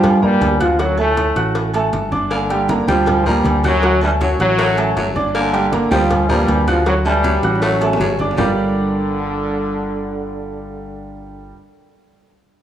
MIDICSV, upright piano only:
0, 0, Header, 1, 2, 480
1, 0, Start_track
1, 0, Key_signature, -2, "minor"
1, 0, Tempo, 379267
1, 1004, Time_signature, 4, 2, 24, 8
1, 15977, End_track
2, 0, Start_track
2, 0, Title_t, "Upright piano"
2, 0, Program_c, 0, 0
2, 0, Note_on_c, 0, 55, 90
2, 0, Note_on_c, 0, 67, 99
2, 0, Note_on_c, 0, 79, 97
2, 191, Note_off_c, 0, 55, 0
2, 194, Note_off_c, 0, 67, 0
2, 195, Note_off_c, 0, 79, 0
2, 280, Note_on_c, 0, 58, 82
2, 281, Note_on_c, 0, 70, 81
2, 284, Note_on_c, 0, 82, 79
2, 675, Note_off_c, 0, 58, 0
2, 676, Note_off_c, 0, 70, 0
2, 677, Note_off_c, 0, 82, 0
2, 758, Note_on_c, 0, 66, 76
2, 761, Note_on_c, 0, 78, 81
2, 765, Note_on_c, 0, 90, 80
2, 957, Note_off_c, 0, 66, 0
2, 959, Note_off_c, 0, 78, 0
2, 961, Note_off_c, 0, 90, 0
2, 1000, Note_on_c, 0, 54, 84
2, 1005, Note_on_c, 0, 66, 84
2, 1007, Note_on_c, 0, 78, 83
2, 1198, Note_off_c, 0, 54, 0
2, 1201, Note_off_c, 0, 66, 0
2, 1202, Note_off_c, 0, 78, 0
2, 1239, Note_on_c, 0, 57, 82
2, 1239, Note_on_c, 0, 69, 80
2, 1244, Note_on_c, 0, 81, 73
2, 1634, Note_off_c, 0, 57, 0
2, 1634, Note_off_c, 0, 69, 0
2, 1638, Note_off_c, 0, 81, 0
2, 1725, Note_on_c, 0, 66, 77
2, 1727, Note_on_c, 0, 78, 80
2, 1729, Note_on_c, 0, 90, 73
2, 2118, Note_off_c, 0, 66, 0
2, 2119, Note_off_c, 0, 78, 0
2, 2120, Note_off_c, 0, 90, 0
2, 2211, Note_on_c, 0, 57, 78
2, 2214, Note_on_c, 0, 69, 75
2, 2217, Note_on_c, 0, 81, 76
2, 2602, Note_off_c, 0, 57, 0
2, 2603, Note_off_c, 0, 69, 0
2, 2605, Note_off_c, 0, 81, 0
2, 2675, Note_on_c, 0, 62, 85
2, 2680, Note_on_c, 0, 74, 78
2, 2685, Note_on_c, 0, 86, 80
2, 3072, Note_off_c, 0, 62, 0
2, 3075, Note_off_c, 0, 74, 0
2, 3078, Note_off_c, 0, 86, 0
2, 3163, Note_on_c, 0, 55, 85
2, 3168, Note_on_c, 0, 67, 88
2, 3173, Note_on_c, 0, 79, 89
2, 3360, Note_off_c, 0, 55, 0
2, 3363, Note_off_c, 0, 67, 0
2, 3366, Note_off_c, 0, 79, 0
2, 3405, Note_on_c, 0, 58, 69
2, 3409, Note_on_c, 0, 70, 71
2, 3413, Note_on_c, 0, 82, 74
2, 3601, Note_off_c, 0, 58, 0
2, 3604, Note_off_c, 0, 70, 0
2, 3606, Note_off_c, 0, 82, 0
2, 3642, Note_on_c, 0, 55, 91
2, 3648, Note_on_c, 0, 67, 86
2, 3650, Note_on_c, 0, 79, 93
2, 4037, Note_off_c, 0, 55, 0
2, 4040, Note_off_c, 0, 67, 0
2, 4041, Note_off_c, 0, 79, 0
2, 4126, Note_on_c, 0, 58, 82
2, 4133, Note_on_c, 0, 70, 84
2, 4139, Note_on_c, 0, 82, 83
2, 4519, Note_off_c, 0, 58, 0
2, 4523, Note_off_c, 0, 70, 0
2, 4526, Note_off_c, 0, 82, 0
2, 4603, Note_on_c, 0, 66, 83
2, 4609, Note_on_c, 0, 78, 76
2, 4614, Note_on_c, 0, 90, 82
2, 4801, Note_off_c, 0, 66, 0
2, 4804, Note_off_c, 0, 78, 0
2, 4807, Note_off_c, 0, 90, 0
2, 4856, Note_on_c, 0, 54, 84
2, 4859, Note_on_c, 0, 66, 83
2, 4866, Note_on_c, 0, 78, 83
2, 5048, Note_off_c, 0, 54, 0
2, 5050, Note_off_c, 0, 66, 0
2, 5054, Note_off_c, 0, 78, 0
2, 5087, Note_on_c, 0, 57, 82
2, 5087, Note_on_c, 0, 69, 79
2, 5096, Note_on_c, 0, 81, 76
2, 5480, Note_off_c, 0, 57, 0
2, 5480, Note_off_c, 0, 69, 0
2, 5485, Note_off_c, 0, 81, 0
2, 5571, Note_on_c, 0, 66, 83
2, 5571, Note_on_c, 0, 78, 81
2, 5576, Note_on_c, 0, 90, 77
2, 5962, Note_off_c, 0, 66, 0
2, 5962, Note_off_c, 0, 78, 0
2, 5965, Note_off_c, 0, 90, 0
2, 6048, Note_on_c, 0, 57, 80
2, 6054, Note_on_c, 0, 69, 79
2, 6057, Note_on_c, 0, 81, 86
2, 6441, Note_off_c, 0, 57, 0
2, 6444, Note_off_c, 0, 69, 0
2, 6446, Note_off_c, 0, 81, 0
2, 6525, Note_on_c, 0, 62, 84
2, 6527, Note_on_c, 0, 74, 90
2, 6530, Note_on_c, 0, 86, 83
2, 6919, Note_off_c, 0, 62, 0
2, 6920, Note_off_c, 0, 74, 0
2, 6922, Note_off_c, 0, 86, 0
2, 7001, Note_on_c, 0, 55, 89
2, 7003, Note_on_c, 0, 67, 90
2, 7008, Note_on_c, 0, 79, 93
2, 7200, Note_off_c, 0, 55, 0
2, 7201, Note_off_c, 0, 67, 0
2, 7204, Note_off_c, 0, 79, 0
2, 7240, Note_on_c, 0, 58, 81
2, 7246, Note_on_c, 0, 70, 78
2, 7249, Note_on_c, 0, 82, 75
2, 7439, Note_off_c, 0, 58, 0
2, 7443, Note_off_c, 0, 70, 0
2, 7445, Note_off_c, 0, 82, 0
2, 7483, Note_on_c, 0, 55, 93
2, 7489, Note_on_c, 0, 67, 92
2, 7490, Note_on_c, 0, 79, 92
2, 7878, Note_off_c, 0, 55, 0
2, 7882, Note_off_c, 0, 67, 0
2, 7883, Note_off_c, 0, 79, 0
2, 7961, Note_on_c, 0, 58, 80
2, 7965, Note_on_c, 0, 70, 81
2, 7970, Note_on_c, 0, 82, 83
2, 8357, Note_off_c, 0, 58, 0
2, 8360, Note_off_c, 0, 70, 0
2, 8362, Note_off_c, 0, 82, 0
2, 8446, Note_on_c, 0, 66, 77
2, 8449, Note_on_c, 0, 78, 81
2, 8452, Note_on_c, 0, 90, 86
2, 8643, Note_off_c, 0, 66, 0
2, 8645, Note_off_c, 0, 78, 0
2, 8647, Note_off_c, 0, 90, 0
2, 8685, Note_on_c, 0, 54, 87
2, 8687, Note_on_c, 0, 66, 88
2, 8693, Note_on_c, 0, 78, 83
2, 8883, Note_off_c, 0, 54, 0
2, 8884, Note_off_c, 0, 66, 0
2, 8887, Note_off_c, 0, 78, 0
2, 8919, Note_on_c, 0, 57, 79
2, 8925, Note_on_c, 0, 69, 80
2, 8929, Note_on_c, 0, 81, 78
2, 9316, Note_off_c, 0, 57, 0
2, 9320, Note_off_c, 0, 69, 0
2, 9322, Note_off_c, 0, 81, 0
2, 9411, Note_on_c, 0, 66, 85
2, 9417, Note_on_c, 0, 78, 75
2, 9418, Note_on_c, 0, 90, 78
2, 9803, Note_off_c, 0, 66, 0
2, 9806, Note_off_c, 0, 78, 0
2, 9807, Note_off_c, 0, 90, 0
2, 9897, Note_on_c, 0, 69, 75
2, 9898, Note_on_c, 0, 57, 80
2, 9902, Note_on_c, 0, 81, 78
2, 10287, Note_off_c, 0, 57, 0
2, 10287, Note_off_c, 0, 69, 0
2, 10290, Note_off_c, 0, 81, 0
2, 10376, Note_on_c, 0, 62, 80
2, 10378, Note_on_c, 0, 74, 83
2, 10386, Note_on_c, 0, 86, 81
2, 10570, Note_off_c, 0, 62, 0
2, 10571, Note_off_c, 0, 74, 0
2, 10575, Note_off_c, 0, 86, 0
2, 10607, Note_on_c, 0, 55, 91
2, 10608, Note_on_c, 0, 62, 85
2, 10610, Note_on_c, 0, 65, 78
2, 10611, Note_on_c, 0, 67, 90
2, 10612, Note_on_c, 0, 70, 85
2, 10615, Note_on_c, 0, 74, 95
2, 14589, Note_off_c, 0, 55, 0
2, 14590, Note_off_c, 0, 62, 0
2, 14592, Note_off_c, 0, 65, 0
2, 14593, Note_off_c, 0, 67, 0
2, 14595, Note_off_c, 0, 70, 0
2, 14597, Note_off_c, 0, 74, 0
2, 15977, End_track
0, 0, End_of_file